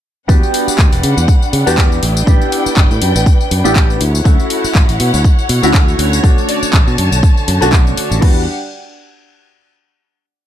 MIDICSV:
0, 0, Header, 1, 7, 480
1, 0, Start_track
1, 0, Tempo, 495868
1, 280, Time_signature, 4, 2, 24, 8
1, 10130, End_track
2, 0, Start_track
2, 0, Title_t, "Analog polysynth"
2, 0, Program_c, 0, 90
2, 6279, Note_on_c, 0, 74, 93
2, 6433, Note_off_c, 0, 74, 0
2, 10130, End_track
3, 0, Start_track
3, 0, Title_t, "String section"
3, 0, Program_c, 1, 48
3, 283, Note_on_c, 1, 62, 83
3, 283, Note_on_c, 1, 78, 91
3, 284, Note_on_c, 1, 55, 74
3, 1945, Note_off_c, 1, 55, 0
3, 1945, Note_off_c, 1, 78, 0
3, 1962, Note_on_c, 1, 71, 76
3, 1964, Note_on_c, 1, 79, 92
3, 3845, Note_off_c, 1, 62, 0
3, 3862, Note_off_c, 1, 71, 0
3, 3863, Note_off_c, 1, 79, 0
3, 3880, Note_on_c, 1, 78, 93
3, 3881, Note_on_c, 1, 64, 83
3, 3881, Note_on_c, 1, 73, 80
3, 6018, Note_off_c, 1, 78, 0
3, 6019, Note_off_c, 1, 64, 0
3, 6034, Note_on_c, 1, 50, 85
3, 6039, Note_on_c, 1, 81, 96
3, 7922, Note_off_c, 1, 73, 0
3, 7938, Note_off_c, 1, 50, 0
3, 7940, Note_off_c, 1, 81, 0
3, 7960, Note_on_c, 1, 62, 73
3, 7962, Note_on_c, 1, 67, 70
3, 7962, Note_on_c, 1, 78, 80
3, 8183, Note_off_c, 1, 62, 0
3, 8184, Note_off_c, 1, 67, 0
3, 8184, Note_off_c, 1, 78, 0
3, 10130, End_track
4, 0, Start_track
4, 0, Title_t, "Grand piano"
4, 0, Program_c, 2, 0
4, 272, Note_on_c, 2, 59, 88
4, 276, Note_on_c, 2, 62, 80
4, 281, Note_on_c, 2, 66, 78
4, 287, Note_on_c, 2, 67, 96
4, 1577, Note_off_c, 2, 59, 0
4, 1579, Note_off_c, 2, 62, 0
4, 1581, Note_off_c, 2, 66, 0
4, 1585, Note_off_c, 2, 67, 0
4, 1610, Note_on_c, 2, 59, 93
4, 1612, Note_on_c, 2, 62, 88
4, 1615, Note_on_c, 2, 66, 86
4, 1617, Note_on_c, 2, 67, 107
4, 1945, Note_off_c, 2, 59, 0
4, 1947, Note_off_c, 2, 62, 0
4, 1948, Note_off_c, 2, 66, 0
4, 1949, Note_off_c, 2, 67, 0
4, 2190, Note_on_c, 2, 59, 90
4, 2197, Note_on_c, 2, 62, 80
4, 2203, Note_on_c, 2, 64, 78
4, 2207, Note_on_c, 2, 67, 98
4, 3496, Note_off_c, 2, 59, 0
4, 3499, Note_off_c, 2, 62, 0
4, 3503, Note_off_c, 2, 64, 0
4, 3504, Note_off_c, 2, 67, 0
4, 3524, Note_on_c, 2, 59, 100
4, 3528, Note_on_c, 2, 62, 90
4, 3529, Note_on_c, 2, 64, 86
4, 3533, Note_on_c, 2, 67, 107
4, 3863, Note_off_c, 2, 59, 0
4, 3865, Note_off_c, 2, 62, 0
4, 3865, Note_off_c, 2, 64, 0
4, 3867, Note_off_c, 2, 67, 0
4, 4106, Note_on_c, 2, 57, 86
4, 4113, Note_on_c, 2, 61, 79
4, 4117, Note_on_c, 2, 64, 80
4, 4123, Note_on_c, 2, 66, 99
4, 5414, Note_off_c, 2, 57, 0
4, 5417, Note_off_c, 2, 61, 0
4, 5420, Note_off_c, 2, 64, 0
4, 5422, Note_off_c, 2, 66, 0
4, 5443, Note_on_c, 2, 57, 97
4, 5449, Note_on_c, 2, 61, 91
4, 5453, Note_on_c, 2, 64, 94
4, 5459, Note_on_c, 2, 66, 105
4, 6009, Note_off_c, 2, 57, 0
4, 6012, Note_off_c, 2, 61, 0
4, 6014, Note_off_c, 2, 64, 0
4, 6017, Note_off_c, 2, 66, 0
4, 6030, Note_on_c, 2, 57, 89
4, 6034, Note_on_c, 2, 61, 77
4, 6040, Note_on_c, 2, 62, 81
4, 6045, Note_on_c, 2, 66, 96
4, 7336, Note_off_c, 2, 57, 0
4, 7338, Note_off_c, 2, 61, 0
4, 7341, Note_off_c, 2, 62, 0
4, 7343, Note_off_c, 2, 66, 0
4, 7364, Note_on_c, 2, 57, 98
4, 7368, Note_on_c, 2, 61, 91
4, 7374, Note_on_c, 2, 62, 91
4, 7378, Note_on_c, 2, 66, 107
4, 7930, Note_off_c, 2, 57, 0
4, 7932, Note_off_c, 2, 61, 0
4, 7934, Note_off_c, 2, 62, 0
4, 7937, Note_off_c, 2, 66, 0
4, 7946, Note_on_c, 2, 55, 90
4, 7953, Note_on_c, 2, 59, 81
4, 7961, Note_on_c, 2, 62, 82
4, 7970, Note_on_c, 2, 66, 97
4, 8136, Note_off_c, 2, 55, 0
4, 8140, Note_off_c, 2, 59, 0
4, 8144, Note_off_c, 2, 62, 0
4, 8149, Note_off_c, 2, 66, 0
4, 10130, End_track
5, 0, Start_track
5, 0, Title_t, "Fingered electric bass"
5, 0, Program_c, 3, 33
5, 281, Note_on_c, 3, 40, 96
5, 380, Note_off_c, 3, 40, 0
5, 760, Note_on_c, 3, 38, 85
5, 860, Note_off_c, 3, 38, 0
5, 894, Note_on_c, 3, 28, 88
5, 974, Note_off_c, 3, 28, 0
5, 1001, Note_on_c, 3, 49, 92
5, 1101, Note_off_c, 3, 49, 0
5, 1134, Note_on_c, 3, 40, 100
5, 1214, Note_off_c, 3, 40, 0
5, 1481, Note_on_c, 3, 49, 93
5, 1581, Note_off_c, 3, 49, 0
5, 1616, Note_on_c, 3, 40, 82
5, 1919, Note_off_c, 3, 40, 0
5, 1963, Note_on_c, 3, 33, 105
5, 2149, Note_off_c, 3, 33, 0
5, 2199, Note_on_c, 3, 33, 95
5, 2300, Note_off_c, 3, 33, 0
5, 2680, Note_on_c, 3, 31, 83
5, 2780, Note_off_c, 3, 31, 0
5, 2815, Note_on_c, 3, 45, 88
5, 2894, Note_off_c, 3, 45, 0
5, 2922, Note_on_c, 3, 42, 92
5, 3021, Note_off_c, 3, 42, 0
5, 3054, Note_on_c, 3, 33, 103
5, 3134, Note_off_c, 3, 33, 0
5, 3400, Note_on_c, 3, 42, 92
5, 3500, Note_off_c, 3, 42, 0
5, 3533, Note_on_c, 3, 33, 86
5, 3838, Note_off_c, 3, 33, 0
5, 3880, Note_on_c, 3, 38, 109
5, 4067, Note_off_c, 3, 38, 0
5, 4117, Note_on_c, 3, 38, 101
5, 4219, Note_off_c, 3, 38, 0
5, 4597, Note_on_c, 3, 33, 86
5, 4699, Note_off_c, 3, 33, 0
5, 4732, Note_on_c, 3, 33, 89
5, 4813, Note_off_c, 3, 33, 0
5, 4841, Note_on_c, 3, 47, 94
5, 4941, Note_off_c, 3, 47, 0
5, 4974, Note_on_c, 3, 38, 105
5, 5054, Note_off_c, 3, 38, 0
5, 5318, Note_on_c, 3, 47, 96
5, 5419, Note_off_c, 3, 47, 0
5, 5449, Note_on_c, 3, 38, 84
5, 5756, Note_off_c, 3, 38, 0
5, 5795, Note_on_c, 3, 38, 106
5, 5985, Note_off_c, 3, 38, 0
5, 6037, Note_on_c, 3, 35, 100
5, 6139, Note_off_c, 3, 35, 0
5, 6519, Note_on_c, 3, 33, 86
5, 6619, Note_off_c, 3, 33, 0
5, 6652, Note_on_c, 3, 47, 89
5, 6733, Note_off_c, 3, 47, 0
5, 6759, Note_on_c, 3, 42, 98
5, 6860, Note_off_c, 3, 42, 0
5, 6890, Note_on_c, 3, 35, 104
5, 6972, Note_off_c, 3, 35, 0
5, 7240, Note_on_c, 3, 42, 95
5, 7340, Note_off_c, 3, 42, 0
5, 7372, Note_on_c, 3, 35, 85
5, 7677, Note_off_c, 3, 35, 0
5, 7852, Note_on_c, 3, 33, 94
5, 7933, Note_off_c, 3, 33, 0
5, 7960, Note_on_c, 3, 40, 92
5, 8183, Note_off_c, 3, 40, 0
5, 10130, End_track
6, 0, Start_track
6, 0, Title_t, "Muted fingered electric bass strokes"
6, 654, Note_on_c, 9, 29, 40
6, 751, Note_off_c, 9, 29, 0
6, 2575, Note_on_c, 9, 29, 41
6, 2672, Note_off_c, 9, 29, 0
6, 4495, Note_on_c, 9, 29, 44
6, 4591, Note_off_c, 9, 29, 0
6, 6413, Note_on_c, 9, 29, 43
6, 6510, Note_off_c, 9, 29, 0
6, 7721, Note_on_c, 9, 29, 45
6, 7818, Note_off_c, 9, 29, 0
6, 10130, End_track
7, 0, Start_track
7, 0, Title_t, "Drums"
7, 281, Note_on_c, 9, 36, 119
7, 285, Note_on_c, 9, 54, 63
7, 378, Note_off_c, 9, 36, 0
7, 382, Note_off_c, 9, 54, 0
7, 419, Note_on_c, 9, 54, 35
7, 516, Note_off_c, 9, 54, 0
7, 522, Note_on_c, 9, 46, 101
7, 619, Note_off_c, 9, 46, 0
7, 659, Note_on_c, 9, 54, 71
7, 756, Note_off_c, 9, 54, 0
7, 760, Note_on_c, 9, 36, 124
7, 762, Note_on_c, 9, 39, 123
7, 765, Note_on_c, 9, 54, 60
7, 857, Note_off_c, 9, 36, 0
7, 859, Note_off_c, 9, 39, 0
7, 862, Note_off_c, 9, 54, 0
7, 896, Note_on_c, 9, 46, 59
7, 898, Note_on_c, 9, 54, 35
7, 993, Note_off_c, 9, 46, 0
7, 995, Note_off_c, 9, 54, 0
7, 1001, Note_on_c, 9, 46, 114
7, 1098, Note_off_c, 9, 46, 0
7, 1139, Note_on_c, 9, 54, 71
7, 1235, Note_off_c, 9, 54, 0
7, 1240, Note_on_c, 9, 36, 113
7, 1245, Note_on_c, 9, 54, 58
7, 1337, Note_off_c, 9, 36, 0
7, 1342, Note_off_c, 9, 54, 0
7, 1378, Note_on_c, 9, 54, 36
7, 1475, Note_off_c, 9, 54, 0
7, 1483, Note_on_c, 9, 46, 101
7, 1580, Note_off_c, 9, 46, 0
7, 1618, Note_on_c, 9, 54, 75
7, 1715, Note_off_c, 9, 54, 0
7, 1720, Note_on_c, 9, 36, 118
7, 1723, Note_on_c, 9, 39, 127
7, 1725, Note_on_c, 9, 54, 59
7, 1816, Note_off_c, 9, 36, 0
7, 1820, Note_off_c, 9, 39, 0
7, 1822, Note_off_c, 9, 54, 0
7, 1859, Note_on_c, 9, 54, 34
7, 1956, Note_off_c, 9, 54, 0
7, 1962, Note_on_c, 9, 46, 105
7, 2059, Note_off_c, 9, 46, 0
7, 2098, Note_on_c, 9, 54, 71
7, 2195, Note_off_c, 9, 54, 0
7, 2199, Note_on_c, 9, 36, 124
7, 2206, Note_on_c, 9, 54, 58
7, 2296, Note_off_c, 9, 36, 0
7, 2302, Note_off_c, 9, 54, 0
7, 2337, Note_on_c, 9, 54, 34
7, 2434, Note_off_c, 9, 54, 0
7, 2442, Note_on_c, 9, 46, 102
7, 2539, Note_off_c, 9, 46, 0
7, 2577, Note_on_c, 9, 54, 71
7, 2674, Note_off_c, 9, 54, 0
7, 2679, Note_on_c, 9, 36, 127
7, 2681, Note_on_c, 9, 39, 121
7, 2684, Note_on_c, 9, 54, 57
7, 2776, Note_off_c, 9, 36, 0
7, 2778, Note_off_c, 9, 39, 0
7, 2781, Note_off_c, 9, 54, 0
7, 2816, Note_on_c, 9, 54, 34
7, 2913, Note_off_c, 9, 54, 0
7, 2919, Note_on_c, 9, 46, 113
7, 3016, Note_off_c, 9, 46, 0
7, 3056, Note_on_c, 9, 54, 70
7, 3153, Note_off_c, 9, 54, 0
7, 3159, Note_on_c, 9, 36, 123
7, 3163, Note_on_c, 9, 54, 54
7, 3255, Note_off_c, 9, 36, 0
7, 3260, Note_off_c, 9, 54, 0
7, 3297, Note_on_c, 9, 54, 36
7, 3394, Note_off_c, 9, 54, 0
7, 3401, Note_on_c, 9, 46, 109
7, 3498, Note_off_c, 9, 46, 0
7, 3536, Note_on_c, 9, 54, 68
7, 3632, Note_off_c, 9, 54, 0
7, 3638, Note_on_c, 9, 36, 117
7, 3641, Note_on_c, 9, 39, 127
7, 3643, Note_on_c, 9, 54, 62
7, 3735, Note_off_c, 9, 36, 0
7, 3738, Note_off_c, 9, 39, 0
7, 3740, Note_off_c, 9, 54, 0
7, 3776, Note_on_c, 9, 54, 33
7, 3873, Note_off_c, 9, 54, 0
7, 3878, Note_on_c, 9, 46, 107
7, 3975, Note_off_c, 9, 46, 0
7, 4015, Note_on_c, 9, 54, 71
7, 4112, Note_off_c, 9, 54, 0
7, 4118, Note_on_c, 9, 36, 127
7, 4121, Note_on_c, 9, 54, 58
7, 4214, Note_off_c, 9, 36, 0
7, 4218, Note_off_c, 9, 54, 0
7, 4254, Note_on_c, 9, 54, 34
7, 4350, Note_off_c, 9, 54, 0
7, 4358, Note_on_c, 9, 46, 110
7, 4455, Note_off_c, 9, 46, 0
7, 4495, Note_on_c, 9, 54, 65
7, 4592, Note_off_c, 9, 54, 0
7, 4598, Note_on_c, 9, 36, 127
7, 4600, Note_on_c, 9, 39, 122
7, 4603, Note_on_c, 9, 54, 56
7, 4694, Note_off_c, 9, 36, 0
7, 4697, Note_off_c, 9, 39, 0
7, 4699, Note_off_c, 9, 54, 0
7, 4733, Note_on_c, 9, 46, 61
7, 4735, Note_on_c, 9, 54, 33
7, 4830, Note_off_c, 9, 46, 0
7, 4832, Note_off_c, 9, 54, 0
7, 4839, Note_on_c, 9, 46, 112
7, 4936, Note_off_c, 9, 46, 0
7, 4974, Note_on_c, 9, 54, 65
7, 5071, Note_off_c, 9, 54, 0
7, 5077, Note_on_c, 9, 36, 123
7, 5082, Note_on_c, 9, 54, 53
7, 5174, Note_off_c, 9, 36, 0
7, 5178, Note_off_c, 9, 54, 0
7, 5214, Note_on_c, 9, 54, 34
7, 5311, Note_off_c, 9, 54, 0
7, 5317, Note_on_c, 9, 46, 109
7, 5414, Note_off_c, 9, 46, 0
7, 5453, Note_on_c, 9, 54, 68
7, 5550, Note_off_c, 9, 54, 0
7, 5557, Note_on_c, 9, 36, 125
7, 5559, Note_on_c, 9, 39, 127
7, 5561, Note_on_c, 9, 54, 60
7, 5654, Note_off_c, 9, 36, 0
7, 5656, Note_off_c, 9, 39, 0
7, 5658, Note_off_c, 9, 54, 0
7, 5695, Note_on_c, 9, 54, 33
7, 5792, Note_off_c, 9, 54, 0
7, 5799, Note_on_c, 9, 46, 116
7, 5896, Note_off_c, 9, 46, 0
7, 5935, Note_on_c, 9, 54, 66
7, 6032, Note_off_c, 9, 54, 0
7, 6037, Note_on_c, 9, 36, 127
7, 6042, Note_on_c, 9, 54, 58
7, 6134, Note_off_c, 9, 36, 0
7, 6139, Note_off_c, 9, 54, 0
7, 6176, Note_on_c, 9, 54, 35
7, 6273, Note_off_c, 9, 54, 0
7, 6279, Note_on_c, 9, 46, 106
7, 6376, Note_off_c, 9, 46, 0
7, 6415, Note_on_c, 9, 54, 67
7, 6511, Note_off_c, 9, 54, 0
7, 6518, Note_on_c, 9, 36, 127
7, 6521, Note_on_c, 9, 39, 118
7, 6523, Note_on_c, 9, 54, 54
7, 6615, Note_off_c, 9, 36, 0
7, 6617, Note_off_c, 9, 39, 0
7, 6620, Note_off_c, 9, 54, 0
7, 6656, Note_on_c, 9, 54, 31
7, 6753, Note_off_c, 9, 54, 0
7, 6759, Note_on_c, 9, 46, 115
7, 6856, Note_off_c, 9, 46, 0
7, 6895, Note_on_c, 9, 54, 68
7, 6992, Note_off_c, 9, 54, 0
7, 6999, Note_on_c, 9, 36, 127
7, 7004, Note_on_c, 9, 54, 55
7, 7095, Note_off_c, 9, 36, 0
7, 7101, Note_off_c, 9, 54, 0
7, 7137, Note_on_c, 9, 54, 34
7, 7234, Note_off_c, 9, 54, 0
7, 7240, Note_on_c, 9, 46, 114
7, 7337, Note_off_c, 9, 46, 0
7, 7376, Note_on_c, 9, 54, 68
7, 7473, Note_off_c, 9, 54, 0
7, 7479, Note_on_c, 9, 36, 124
7, 7481, Note_on_c, 9, 39, 127
7, 7483, Note_on_c, 9, 54, 56
7, 7576, Note_off_c, 9, 36, 0
7, 7578, Note_off_c, 9, 39, 0
7, 7580, Note_off_c, 9, 54, 0
7, 7617, Note_on_c, 9, 54, 31
7, 7714, Note_off_c, 9, 54, 0
7, 7720, Note_on_c, 9, 46, 114
7, 7816, Note_off_c, 9, 46, 0
7, 7856, Note_on_c, 9, 54, 66
7, 7953, Note_off_c, 9, 54, 0
7, 7960, Note_on_c, 9, 36, 112
7, 7961, Note_on_c, 9, 49, 92
7, 8056, Note_off_c, 9, 36, 0
7, 8058, Note_off_c, 9, 49, 0
7, 10130, End_track
0, 0, End_of_file